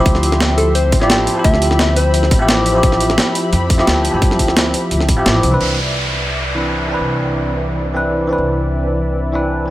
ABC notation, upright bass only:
X:1
M:4/4
L:1/16
Q:1/4=173
K:C
V:1 name="Upright bass" clef=bass
D,,8- D,,2 A,,,4 z2 | D,,8- D,,2 A,,,6- | A,,,4 z4 F,,4 D,,3 G,,- | G,,2 D,,4 z2 D,,2 A,,,2 A,,,2 C,,2 |
C,,16 | C,,16 | C,,16 |]